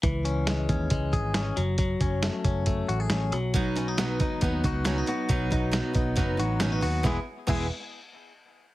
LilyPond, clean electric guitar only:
\new Staff \with { instrumentName = "Clean electric guitar" } { \time 4/4 \key e \major \tempo 4 = 137 e8 cis'8 gis8 cis'8 gis8 gis'8 cis'8 fis8 | fis8 cis'8 a8 cis'8 a8 fis'16 gis'16 cis'8 fis8 | fis8 cis'16 dis'16 b8 dis'8 b8 fis'8 cis'16 dis'16 fis'8 | fis8 dis'8 b8 dis'8 b8 fis'8 cis'16 dis'16 fis'8 |
<b e' gis'>8 r8 <b e' gis'>8 r2 r8 | }